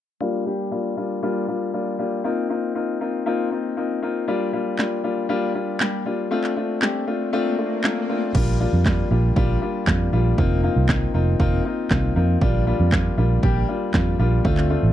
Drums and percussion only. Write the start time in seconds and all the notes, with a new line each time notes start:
4.79 snare, clap
5.80 snare, clap
6.44 clap
6.82 snare, clap
7.84 snare, clap
8.35 kick, crash
8.86 kick, snare, clap
9.36 kick
9.87 kick, snare, clap
10.38 kick
10.89 kick, snare, clap
11.40 kick
11.91 kick, snare, clap
12.41 kick
12.92 kick, snare, clap
13.43 kick
13.94 kick, snare, clap
14.45 kick
14.57 clap